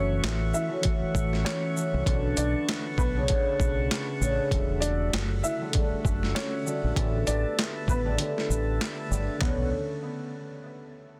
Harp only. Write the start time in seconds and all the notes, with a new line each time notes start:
Already playing: E3 A3 C#4 F#4
0.68 E3 A3 C#4 F#4
0.83 E3 A3 C#4 F#4
1.76 E3 A3 C#4 F#4
2.04 D3 A3 B3 D4
3.16 C#3 A3 B3 D4
3.28 A3 B3 C#4 D4
4.21 C#3 A3 B3 D4
4.51 D3 G3 A3 F#4
5.60 D3 G3 A3 F#4
5.73 D3 G3 A3 F#4
6.65 D3 G3 A3 F#4
6.96 D3 A3 B3 G4
8.05 D3 A3 B3 G4
8.18 D3 A3 B3 G4
9.10 D3 A3 B3 G4
9.41 D3 B3 C#4 A4